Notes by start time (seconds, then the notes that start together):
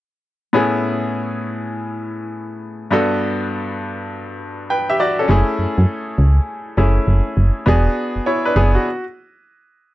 0.53 A2 B3 C#4 E4 G#4
2.91 G2 B3 D4 F#4 A4
4.70 B4 G5
4.90 G4 E5
5.00 F#4 D5
5.19 C#4 A4
5.28 F#1 A3 C#4 E4 G#4
5.59 F#2
5.78 F#2
6.18 C#2
6.77 F#1 A3 C#4 E4 G#4
7.07 F#1
7.37 F#1
7.66 E1 B3 D4 F#4 G#4
8.16 F#1
8.26 E4 C#5
8.45 D4 B4
8.56 F#1 B3 G#4
8.75 F#4